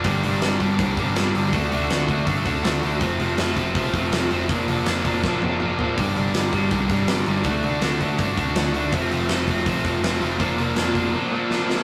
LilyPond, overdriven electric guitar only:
\new Staff \with { instrumentName = "Overdriven electric guitar" } { \clef bass \time 4/4 \key g \minor \tempo 4 = 162 <g, d g>8 <g, d g>8 <g, d g>8 <g, d g>8 <g, d g>8 <g, d g>8 <g, d g>8 <g, d g>8 | <d a d'>8 <d a d'>8 <d a d'>8 <d a d'>8 <d a d'>8 <d a d'>8 <d a d'>8 <d a d'>8 | <f, c f>8 <f, c f>8 <f, c f>8 <f, c f>8 <f, c f>8 <f, c f>8 <f, c f>8 <f, c f>8 | <bes, f bes>8 <bes, f bes>8 <bes, f bes>8 <bes, f bes>8 <bes, f bes>8 <bes, f bes>8 <bes, f bes>8 <bes, f bes>8 |
<g, d g>8 <g, d g>8 <g, d g>8 <g, d g>8 <g, d g>8 <g, d g>8 <g, d g>8 <g, d g>8 | <d a d'>8 <d a d'>8 <d a d'>8 <d a d'>8 <d a d'>8 <d a d'>8 <d a d'>8 <d a d'>8 | <f, c f>8 <f, c f>8 <f, c f>8 <f, c f>8 <f, c f>8 <f, c f>8 <f, c f>8 <f, c f>8 | <bes, f bes>8 <bes, f bes>8 <bes, f bes>8 <bes, f bes>8 <bes, f bes>8 <bes, f bes>8 <bes, f bes>8 <bes, f bes>8 | }